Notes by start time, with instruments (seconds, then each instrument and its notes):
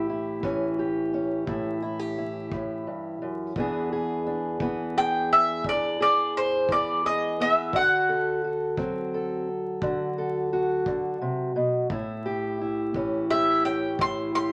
Already playing: steel-string acoustic guitar A2 E3 G4, mandolin E5
0.10 steel-string acoustic guitar E4
0.43 steel-string acoustic guitar E3 C#4, kick
0.79 steel-string acoustic guitar G4
1.14 steel-string acoustic guitar C#4
1.47 steel-string acoustic guitar A2 E4, kick
1.82 steel-string acoustic guitar E4
1.99 steel-string acoustic guitar G4
2.18 steel-string acoustic guitar E4
2.52 steel-string acoustic guitar A2, kick
2.87 steel-string acoustic guitar G2
3.22 steel-string acoustic guitar F#2
3.56 steel-string acoustic guitar E2 E3 B3 D4 G#4, kick
3.92 steel-string acoustic guitar G#4
4.27 steel-string acoustic guitar D4
4.60 steel-string acoustic guitar E3 B3, kick
4.97 steel-string acoustic guitar G#4, mandolin G5
5.33 mandolin E5
5.64 steel-string acoustic guitar E2 D4, kick
5.69 mandolin D5
6.00 steel-string acoustic guitar G#4, mandolin D5
6.37 mandolin C5
6.69 steel-string acoustic guitar E3 B3, mandolin D5, kick
7.05 steel-string acoustic guitar G#4, mandolin D#5
7.40 steel-string acoustic guitar B3, mandolin E5
7.73 steel-string acoustic guitar D3 F#4, mandolin F#5, kick
8.09 steel-string acoustic guitar A4
8.44 steel-string acoustic guitar F#4
8.77 steel-string acoustic guitar F#3 C4, kick
9.14 steel-string acoustic guitar A4
9.82 steel-string acoustic guitar D3 F#4, kick
10.18 steel-string acoustic guitar A4
10.53 steel-string acoustic guitar F#4
10.86 steel-string acoustic guitar D3, kick
11.22 steel-string acoustic guitar C3
11.56 steel-string acoustic guitar B2
11.90 steel-string acoustic guitar A2 E4, kick
12.26 steel-string acoustic guitar G4
12.61 steel-string acoustic guitar E4
12.94 steel-string acoustic guitar E3 C#4, kick
13.30 steel-string acoustic guitar G4, mandolin E5
13.65 steel-string acoustic guitar C#4, mandolin G5
13.99 steel-string acoustic guitar A2 E4, mandolin C6, kick
14.35 steel-string acoustic guitar G4, mandolin C6